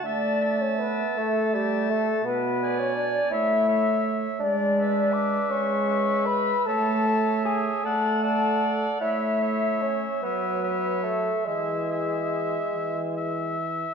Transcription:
<<
  \new Staff \with { instrumentName = "Oboe" } { \time 6/8 \key a \mixolydian \tempo 4. = 52 a''8 a''4. a''4 | r8 gis''4 e''8 e''4 | \key e \mixolydian r8 e''4. e''4 | e''8 e''4 fis''8 fis''4 |
e''8 e''4 e''8 e''4 | e''8 e''4. e''4 | }
  \new Staff \with { instrumentName = "Flute" } { \time 6/8 \key a \mixolydian d''8. cis''16 b'8 a'8 g'8 a'8 | b'8. cis''16 d''8 e''4~ e''16 r16 | \key e \mixolydian d''4 d'''8 cis'''4 b''8 | a''4 gis''8 a''4. |
e''4 cis''8 b'4 a'8 | gis'2~ gis'8 r8 | }
  \new Staff \with { instrumentName = "Clarinet" } { \time 6/8 \key a \mixolydian e''8 e''4. e''4 | r8 d''4 cis''8 cis''4 | \key e \mixolydian r8 b'4. b'4 | cis''8 cis''4 d''8 d''4 |
cis''8 cis''4 cis''8 cis''4 | e''8 e''4. e''4 | }
  \new Staff \with { instrumentName = "Bassoon" } { \time 6/8 \key a \mixolydian d'8. cis'16 b8 a8 g8 a8 | b8. cis'16 d'8 e'4~ e'16 r16 | \key e \mixolydian d'4 d'8 cis'4 b'8 | a'4 gis'8 a'4. |
e'4 cis'8 b4 a8 | gis2~ gis8 r8 | }
  \new Staff \with { instrumentName = "French horn" } { \clef bass \time 6/8 \key a \mixolydian a4. a4. | b,4. a4. | \key e \mixolydian gis4. gis4. | a4. a4. |
a4. fis4. | e4. e4. | }
>>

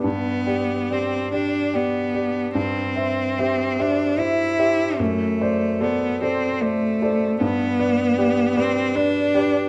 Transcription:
<<
  \new Staff \with { instrumentName = "Grand piano" } { \time 6/8 \key g \major \tempo 4. = 50 g,8 <g' d''>8 <g' d''>8 <g' d''>8 <g' d''>8 <g' d''>8 | g,8 <c'' e''>8 <g' c'' e''>8 <g' c'' e''>8 <c'' e''>8 <g' c'' e''>8 | fis,8 <c'' d''>8 <a' c'' d''>8 <a' c'' d''>8 <c'' d''>8 <a' c'' d''>8 | g,8 <b' d''>8 <g' b' d''>8 <g' b' d''>8 <b' d''>8 <g' b' d''>8 | }
  \new Staff \with { instrumentName = "Cello" } { \time 6/8 \key g \major b4 c'8 d'8 b4 | c'4. d'8 e'4 | a4 b8 c'8 a4 | b4. c'8 d'4 | }
>>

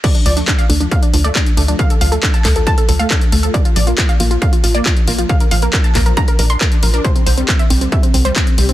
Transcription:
<<
  \new Staff \with { instrumentName = "Synth pluck" } { \time 4/4 \key d \minor \tempo 4 = 137 d''16 d'16 d''16 d'16 d'16 f''16 d'16 d'16 f''16 d'16 d'16 d''16 d'16 r16 d'16 d'16 | f''16 a'16 f''16 a'16 a'16 a''16 a'16 a'16 a''16 a'16 a'16 f''16 a'16 r16 a'16 a'16 | d''16 f'16 d''16 f'16 f'16 f''16 f'16 f'16 f''16 f'16 f'16 d''16 f'16 r16 f'16 f'16 | f''16 bes'16 f''16 bes'16 bes'16 a''16 bes'16 bes'16 bes''16 bes'16 bes'16 c'''16 bes'16 r16 bes'16 bes'16 |
c''16 c'16 c''16 c'16 c'16 e''16 c'16 c'16 e''16 c'16 c'16 c''16 c'16 r16 c'16 c'16 | }
  \new Staff \with { instrumentName = "Synth pluck" } { \clef bass \time 4/4 \key d \minor d16 r16 f16 a16 d'16 r16 a16 f16 d16 r16 f16 a16 d'16 r16 a16 f16 | d16 r16 f16 a16 d'16 r16 a16 f16 d16 r16 f16 a16 d'16 r16 a16 f16 | d16 r16 f16 bes16 d'16 r16 bes16 f16 d16 r16 f16 bes16 d'16 r16 bes16 f16 | d16 r16 f16 bes16 d'16 r16 bes16 f16 d16 r16 d'16 d'16 d16 d'16 f16 d'16 |
c16 r16 d16 g16 c'16 r16 g16 d16 c16 r16 d16 g16 c'16 r16 g16 d16 | }
  \new Staff \with { instrumentName = "Analog synth bass" } { \clef bass \time 4/4 \key d \minor r8 d,8 r8 d,8 r8 d,8 r8 d,8 | r8 d,8 r8 d,8 r8 d,8 r8 d,8 | r8 bes,,8 r8 bes,,8 r8 bes,,8 r8 bes,,8 | r8 bes,,8 r8 bes,,8 r8 bes,,8 r8 bes,,8 |
r8 c,8 r8 c,8 r8 c,8 r8 c,8 | }
  \new DrumStaff \with { instrumentName = "Drums" } \drummode { \time 4/4 <cymc hh bd>16 hh16 hho16 hh16 <hc hh bd>16 hh16 hho16 hh16 <hh bd>16 hh16 hho16 hh16 <hc hh bd>16 hh16 hho16 hh16 | <hh bd>16 hh16 hho16 hh16 <hc hh bd>16 hh16 <hc hho bd>16 hh16 <hh bd>16 hh16 hho16 hh16 <hc hh bd>16 hh16 hho16 hh16 | <hh bd>16 hh16 hho16 hh16 <hc hh bd>16 hh16 hho16 hh16 <hh bd>16 hh16 hho16 hh16 <hc hh bd>16 hh16 hho16 hh16 | <hh bd>16 hh16 hho16 hh16 <hc hh bd>16 hh16 <hc hho bd>16 hh16 <hh bd>16 hh16 hho16 hh16 <hc hh bd>16 hh16 hho16 hh16 |
<hh bd>16 hh16 hho16 hh16 <hc hh bd>16 hh16 hho16 hh16 <hh bd>16 hh16 hho16 hh16 <hc hh bd>16 hh16 hho16 hh16 | }
>>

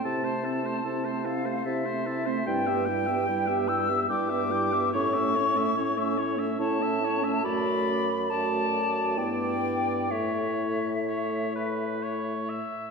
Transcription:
<<
  \new Staff \with { instrumentName = "Flute" } { \time 3/4 \key a \phrygian \tempo 4 = 71 a''4. f''8 e''4 | \key a \mixolydian g''4. e'''8 d'''4 | cis'''4. r8 a''4 | b''4 a''4 g''4 |
e''2~ e''8 r8 | }
  \new Staff \with { instrumentName = "Oboe" } { \time 3/4 \key a \phrygian a'16 c''16 a'16 c''16 a'16 c''16 a'16 c''16 a'16 c''16 a'16 c''16 | \key a \mixolydian g''16 e''16 g''16 e''16 g''16 e''16 g''16 e''16 g''16 e''16 g''16 e''16 | cis''16 e''16 cis''16 e''16 cis''16 e''16 cis''16 e''16 cis''16 e''16 cis''16 e''16 | d''4 d''4 d''4 |
cis''4 cis''8 b'8 cis''8 e''8 | }
  \new Staff \with { instrumentName = "Clarinet" } { \time 3/4 \key a \phrygian e'16 c'16 e'16 c'16 e'16 c'16 e'16 c'16 e'16 c'16 e'16 c'16 | \key a \mixolydian e'16 g'16 e'16 g'16 e'16 g'16 e'16 g'16 e'16 g'16 e'16 g'16 | e'16 cis'16 e'16 cis'16 e'16 cis'16 e'16 cis'16 e'16 cis'16 e'16 cis'16 | fis'4 fis'4 e'4 |
e'2~ e'8. r16 | }
  \new Staff \with { instrumentName = "French horn" } { \time 3/4 \key a \phrygian c'16 a16 c'16 a16 c'16 a16 c'16 a16 c'16 a16 c'16 a16 | \key a \mixolydian g16 b16 g16 b16 g16 b16 g16 b16 g16 b16 g16 b16 | cis'16 a16 cis'16 a16 cis'16 a16 cis'16 a16 cis'16 a16 cis'16 a16 | a4 a4 b4 |
a2~ a8. r16 | }
  \new Staff \with { instrumentName = "Bassoon" } { \clef bass \time 3/4 \key a \phrygian c4 c4 c4 | \key a \mixolydian g,4 g,4 g,4 | a,4 a,4 a,4 | fis,2 g,4 |
a,2~ a,8 r8 | }
>>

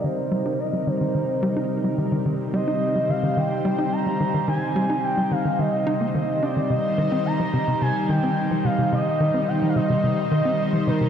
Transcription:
<<
  \new Staff \with { instrumentName = "Analog synth lead" } { \time 4/4 \key ees \major \tempo 4 = 108 c''4 ees''8 c''2 r8 | r8 ees''4 f''8 g''4 bes''4 | aes''4 g''8 f''8 ees''4. d''8 | ees''4 bes''4 aes''8 g''4 f''8 |
ees''4 g''16. f''32 ees''2 bes'8 | }
  \new Staff \with { instrumentName = "Analog synth pad" } { \time 4/4 \key ees \major << { bes'1 | c''1~ | c''1 | c''1~ |
c''1 | } \\ { <c g ees'>1~ | <c g ees'>1~ | <c g ees'>1 | <ees g ees'>1~ |
<ees g ees'>1 | } >> }
  \new Staff \with { instrumentName = "Analog synth bass" } { \clef bass \time 4/4 \key ees \major ees16 r16 g16 ees'16 r16 g16 ees16 ees16 ees16 r16 g16 ees'16 r16 g16 ees16 ees16 | ees16 r16 g16 ees'16 r16 g16 ees16 ees16 ees16 r16 g16 ees'16 r16 g16 ees16 ees16 | ees16 r16 g16 ees'16 r16 g16 ees16 ees16 ees16 r16 ees'16 bes16 ees16 r16 d'16 ees16 | c16 r16 ees16 c'16 r16 f16 c16 c16 c16 r16 ees16 c'16 r16 f16 c16 c16 |
c16 r16 ees16 c'16 r16 f16 c16 c16 c16 r16 ees16 c'16 r16 f16 c16 c16 | }
>>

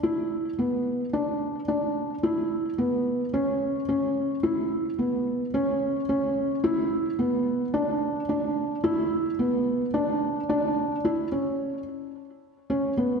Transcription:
\new Staff \with { instrumentName = "Felt piano" } { \time 4/4 \key b \dorian \tempo 4 = 109 e'4 b4 d'4 d'4 | e'4 b4 cis'4 cis'4 | e'4 b4 cis'4 cis'4 | e'4 b4 d'4 d'4 |
e'4 b4 d'4 d'4 | e'8 cis'4 r4. cis'8 b8 | }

